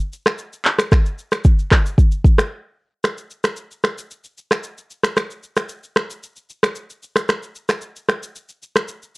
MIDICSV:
0, 0, Header, 1, 2, 480
1, 0, Start_track
1, 0, Tempo, 530973
1, 830, Time_signature, 4, 2, 24, 8
1, 8296, End_track
2, 0, Start_track
2, 0, Title_t, "Drums"
2, 115, Note_on_c, 9, 82, 57
2, 206, Note_off_c, 9, 82, 0
2, 234, Note_on_c, 9, 37, 105
2, 238, Note_on_c, 9, 82, 95
2, 242, Note_on_c, 9, 26, 82
2, 325, Note_off_c, 9, 37, 0
2, 328, Note_off_c, 9, 82, 0
2, 333, Note_off_c, 9, 26, 0
2, 346, Note_on_c, 9, 82, 88
2, 436, Note_off_c, 9, 82, 0
2, 479, Note_on_c, 9, 82, 55
2, 569, Note_off_c, 9, 82, 0
2, 588, Note_on_c, 9, 39, 104
2, 593, Note_on_c, 9, 82, 57
2, 678, Note_off_c, 9, 39, 0
2, 684, Note_off_c, 9, 82, 0
2, 710, Note_on_c, 9, 37, 96
2, 714, Note_on_c, 9, 82, 106
2, 718, Note_on_c, 9, 26, 76
2, 801, Note_off_c, 9, 37, 0
2, 804, Note_off_c, 9, 82, 0
2, 809, Note_off_c, 9, 26, 0
2, 830, Note_on_c, 9, 36, 111
2, 830, Note_on_c, 9, 82, 80
2, 831, Note_on_c, 9, 37, 98
2, 839, Note_on_c, 9, 26, 81
2, 920, Note_off_c, 9, 82, 0
2, 921, Note_off_c, 9, 36, 0
2, 922, Note_off_c, 9, 37, 0
2, 930, Note_off_c, 9, 26, 0
2, 956, Note_on_c, 9, 82, 56
2, 1046, Note_off_c, 9, 82, 0
2, 1071, Note_on_c, 9, 82, 59
2, 1161, Note_off_c, 9, 82, 0
2, 1192, Note_on_c, 9, 82, 90
2, 1193, Note_on_c, 9, 37, 88
2, 1201, Note_on_c, 9, 26, 69
2, 1282, Note_off_c, 9, 82, 0
2, 1284, Note_off_c, 9, 37, 0
2, 1291, Note_off_c, 9, 26, 0
2, 1305, Note_on_c, 9, 82, 83
2, 1310, Note_on_c, 9, 36, 99
2, 1395, Note_off_c, 9, 82, 0
2, 1401, Note_off_c, 9, 36, 0
2, 1437, Note_on_c, 9, 82, 53
2, 1527, Note_off_c, 9, 82, 0
2, 1550, Note_on_c, 9, 36, 88
2, 1551, Note_on_c, 9, 37, 94
2, 1551, Note_on_c, 9, 39, 100
2, 1552, Note_on_c, 9, 82, 58
2, 1559, Note_on_c, 9, 26, 79
2, 1641, Note_off_c, 9, 36, 0
2, 1641, Note_off_c, 9, 37, 0
2, 1641, Note_off_c, 9, 39, 0
2, 1642, Note_off_c, 9, 82, 0
2, 1649, Note_off_c, 9, 26, 0
2, 1680, Note_on_c, 9, 82, 107
2, 1770, Note_off_c, 9, 82, 0
2, 1789, Note_on_c, 9, 36, 100
2, 1794, Note_on_c, 9, 82, 74
2, 1879, Note_off_c, 9, 36, 0
2, 1884, Note_off_c, 9, 82, 0
2, 1912, Note_on_c, 9, 82, 54
2, 2002, Note_off_c, 9, 82, 0
2, 2029, Note_on_c, 9, 36, 96
2, 2036, Note_on_c, 9, 82, 54
2, 2119, Note_off_c, 9, 36, 0
2, 2126, Note_off_c, 9, 82, 0
2, 2155, Note_on_c, 9, 37, 107
2, 2159, Note_on_c, 9, 82, 92
2, 2163, Note_on_c, 9, 26, 80
2, 2246, Note_off_c, 9, 37, 0
2, 2249, Note_off_c, 9, 82, 0
2, 2254, Note_off_c, 9, 26, 0
2, 2749, Note_on_c, 9, 82, 69
2, 2751, Note_on_c, 9, 37, 89
2, 2758, Note_on_c, 9, 26, 71
2, 2840, Note_off_c, 9, 82, 0
2, 2841, Note_off_c, 9, 37, 0
2, 2849, Note_off_c, 9, 26, 0
2, 2874, Note_on_c, 9, 82, 51
2, 2964, Note_off_c, 9, 82, 0
2, 2990, Note_on_c, 9, 82, 52
2, 3080, Note_off_c, 9, 82, 0
2, 3110, Note_on_c, 9, 82, 78
2, 3111, Note_on_c, 9, 37, 85
2, 3119, Note_on_c, 9, 26, 66
2, 3200, Note_off_c, 9, 82, 0
2, 3202, Note_off_c, 9, 37, 0
2, 3209, Note_off_c, 9, 26, 0
2, 3223, Note_on_c, 9, 82, 72
2, 3313, Note_off_c, 9, 82, 0
2, 3356, Note_on_c, 9, 82, 44
2, 3447, Note_off_c, 9, 82, 0
2, 3470, Note_on_c, 9, 37, 89
2, 3471, Note_on_c, 9, 82, 50
2, 3478, Note_on_c, 9, 26, 70
2, 3560, Note_off_c, 9, 37, 0
2, 3561, Note_off_c, 9, 82, 0
2, 3568, Note_off_c, 9, 26, 0
2, 3600, Note_on_c, 9, 82, 96
2, 3690, Note_off_c, 9, 82, 0
2, 3715, Note_on_c, 9, 82, 65
2, 3805, Note_off_c, 9, 82, 0
2, 3834, Note_on_c, 9, 82, 51
2, 3925, Note_off_c, 9, 82, 0
2, 3957, Note_on_c, 9, 82, 50
2, 4047, Note_off_c, 9, 82, 0
2, 4077, Note_on_c, 9, 37, 89
2, 4080, Note_on_c, 9, 82, 85
2, 4084, Note_on_c, 9, 26, 75
2, 4167, Note_off_c, 9, 37, 0
2, 4170, Note_off_c, 9, 82, 0
2, 4175, Note_off_c, 9, 26, 0
2, 4188, Note_on_c, 9, 82, 81
2, 4279, Note_off_c, 9, 82, 0
2, 4320, Note_on_c, 9, 82, 53
2, 4410, Note_off_c, 9, 82, 0
2, 4433, Note_on_c, 9, 82, 52
2, 4523, Note_off_c, 9, 82, 0
2, 4551, Note_on_c, 9, 37, 86
2, 4554, Note_on_c, 9, 82, 91
2, 4559, Note_on_c, 9, 26, 70
2, 4641, Note_off_c, 9, 37, 0
2, 4645, Note_off_c, 9, 82, 0
2, 4649, Note_off_c, 9, 26, 0
2, 4670, Note_on_c, 9, 82, 70
2, 4671, Note_on_c, 9, 37, 91
2, 4679, Note_on_c, 9, 26, 69
2, 4760, Note_off_c, 9, 82, 0
2, 4761, Note_off_c, 9, 37, 0
2, 4769, Note_off_c, 9, 26, 0
2, 4795, Note_on_c, 9, 82, 49
2, 4886, Note_off_c, 9, 82, 0
2, 4910, Note_on_c, 9, 82, 54
2, 5000, Note_off_c, 9, 82, 0
2, 5030, Note_on_c, 9, 82, 80
2, 5032, Note_on_c, 9, 37, 81
2, 5040, Note_on_c, 9, 26, 65
2, 5121, Note_off_c, 9, 82, 0
2, 5122, Note_off_c, 9, 37, 0
2, 5130, Note_off_c, 9, 26, 0
2, 5143, Note_on_c, 9, 82, 74
2, 5233, Note_off_c, 9, 82, 0
2, 5275, Note_on_c, 9, 82, 46
2, 5366, Note_off_c, 9, 82, 0
2, 5389, Note_on_c, 9, 37, 93
2, 5390, Note_on_c, 9, 82, 51
2, 5397, Note_on_c, 9, 26, 73
2, 5479, Note_off_c, 9, 37, 0
2, 5480, Note_off_c, 9, 82, 0
2, 5487, Note_off_c, 9, 26, 0
2, 5519, Note_on_c, 9, 82, 95
2, 5610, Note_off_c, 9, 82, 0
2, 5635, Note_on_c, 9, 82, 65
2, 5725, Note_off_c, 9, 82, 0
2, 5751, Note_on_c, 9, 82, 51
2, 5842, Note_off_c, 9, 82, 0
2, 5874, Note_on_c, 9, 82, 51
2, 5965, Note_off_c, 9, 82, 0
2, 5994, Note_on_c, 9, 37, 95
2, 5998, Note_on_c, 9, 82, 82
2, 6002, Note_on_c, 9, 26, 76
2, 6085, Note_off_c, 9, 37, 0
2, 6088, Note_off_c, 9, 82, 0
2, 6093, Note_off_c, 9, 26, 0
2, 6106, Note_on_c, 9, 82, 83
2, 6196, Note_off_c, 9, 82, 0
2, 6237, Note_on_c, 9, 82, 52
2, 6327, Note_off_c, 9, 82, 0
2, 6352, Note_on_c, 9, 82, 53
2, 6443, Note_off_c, 9, 82, 0
2, 6470, Note_on_c, 9, 37, 92
2, 6473, Note_on_c, 9, 82, 94
2, 6478, Note_on_c, 9, 26, 69
2, 6560, Note_off_c, 9, 37, 0
2, 6564, Note_off_c, 9, 82, 0
2, 6568, Note_off_c, 9, 26, 0
2, 6589, Note_on_c, 9, 82, 73
2, 6590, Note_on_c, 9, 37, 92
2, 6598, Note_on_c, 9, 26, 74
2, 6679, Note_off_c, 9, 82, 0
2, 6681, Note_off_c, 9, 37, 0
2, 6689, Note_off_c, 9, 26, 0
2, 6715, Note_on_c, 9, 82, 52
2, 6805, Note_off_c, 9, 82, 0
2, 6830, Note_on_c, 9, 82, 52
2, 6920, Note_off_c, 9, 82, 0
2, 6951, Note_on_c, 9, 82, 80
2, 6953, Note_on_c, 9, 37, 82
2, 6960, Note_on_c, 9, 26, 66
2, 7041, Note_off_c, 9, 82, 0
2, 7043, Note_off_c, 9, 37, 0
2, 7051, Note_off_c, 9, 26, 0
2, 7064, Note_on_c, 9, 82, 77
2, 7155, Note_off_c, 9, 82, 0
2, 7197, Note_on_c, 9, 82, 47
2, 7287, Note_off_c, 9, 82, 0
2, 7310, Note_on_c, 9, 37, 90
2, 7310, Note_on_c, 9, 82, 52
2, 7318, Note_on_c, 9, 26, 70
2, 7400, Note_off_c, 9, 37, 0
2, 7401, Note_off_c, 9, 82, 0
2, 7408, Note_off_c, 9, 26, 0
2, 7439, Note_on_c, 9, 82, 97
2, 7529, Note_off_c, 9, 82, 0
2, 7553, Note_on_c, 9, 82, 67
2, 7643, Note_off_c, 9, 82, 0
2, 7672, Note_on_c, 9, 82, 51
2, 7763, Note_off_c, 9, 82, 0
2, 7796, Note_on_c, 9, 82, 50
2, 7887, Note_off_c, 9, 82, 0
2, 7914, Note_on_c, 9, 37, 92
2, 7917, Note_on_c, 9, 82, 85
2, 7922, Note_on_c, 9, 26, 75
2, 8004, Note_off_c, 9, 37, 0
2, 8008, Note_off_c, 9, 82, 0
2, 8012, Note_off_c, 9, 26, 0
2, 8027, Note_on_c, 9, 82, 80
2, 8117, Note_off_c, 9, 82, 0
2, 8158, Note_on_c, 9, 82, 50
2, 8248, Note_off_c, 9, 82, 0
2, 8296, End_track
0, 0, End_of_file